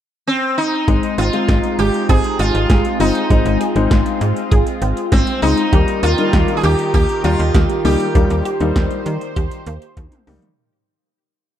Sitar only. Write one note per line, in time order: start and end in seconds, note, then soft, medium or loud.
0.27 0.56 C4 medium
0.58 1.18 D#4 medium
1.18 1.75 F4 loud
1.79 2.07 G4 loud
2.09 2.40 G#4 loud
2.40 3.00 F4 loud
3.00 3.57 D#4 medium
5.12 5.42 C4 medium
5.42 6.03 D#4 medium
6.03 6.53 F4 loud
6.57 6.63 G#4 medium
6.64 6.93 G4 loud
6.94 7.22 G4 loud
7.25 7.81 F4 loud
7.85 8.42 G4 medium